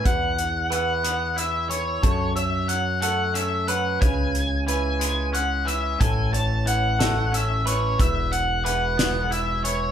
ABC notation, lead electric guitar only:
X:1
M:6/8
L:1/8
Q:3/8=60
K:Emix
V:1 name="Lead electric guitar"
f2 f2 e c- | c e f f e f | g2 g2 f e | g a f2 e c |
e f f2 e c |]